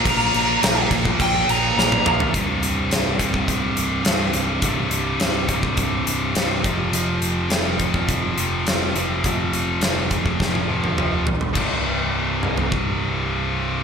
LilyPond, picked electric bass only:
\new Staff \with { instrumentName = "Picked electric bass" } { \clef bass \time 4/4 \key f \dorian \tempo 4 = 104 bes,,8 bes,,8 bes,,8 bes,,8 bes,,8 bes,,8 bes,,8 bes,,8 | c,,8 c,,8 c,,8 c,,8 c,,8 c,,8 c,,8 c,,8 | c,,8 c,,8 c,,8 c,,8 c,,8 c,,8 c,,8 f,,8 | f,,8 f,,8 f,,8 f,,8 f,,8 f,,8 f,,8 f,,8 |
f,,8 f,,8 f,,8 f,,8 f,,8 f,,8 f,,8 bes,,8 | c,,1 | }